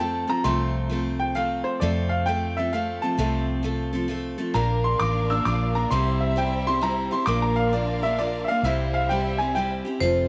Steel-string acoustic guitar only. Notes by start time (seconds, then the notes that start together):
0.00 F3 A3 C4 A4
0.27 F3 A3 C4 A4
0.44 F2 C3 F3 A3 C4 A4
0.90 F3 A3 C4 A4
1.35 F3 A3 C4 A4
1.81 F2 C3 F3 A3 C4 A4
2.27 F3 A3 C4 A4
2.57 F3 A3 C4 A4
2.73 F3 A3 C4 A4
3.02 F3 A3 C4 A4
3.18 F2 C3 F3 A3 C4 A4
3.63 F3 A3 C4 A4
3.93 F3 A3 C4 A4
4.08 F3 A3 C4 A4
4.38 F3 A3 C4 A4
4.54 A#2 F3 A#3 D4 A#4
4.99 F3 A#3 D4 A#4
5.30 A#3 D4 A#4
5.46 F3 A#3 D4 A#4
5.75 A#3 D4 A#4
5.91 C3 G3 C4 E4 G4
6.36 G3 C4 E4 G4
6.67 C4 E4 G4
6.81 G3 C4 E4 G4
7.11 C4 E4 G4
7.27 A#2 F3 A#3 D4 A#4
7.73 F3 A#3 D4 A#4
8.03 A#3 D4 A#4
8.18 F3 A#3 D4 A#4
8.49 A#3 D4 A#4
8.64 C3 G3 C4 E4 G4
9.10 G3 C4 E4 G4
9.40 C4 E4 G4
9.55 G3 C4 E4 G4
9.85 C4 E4 G4
10.01 F2 C3 F3 C4 F4 A4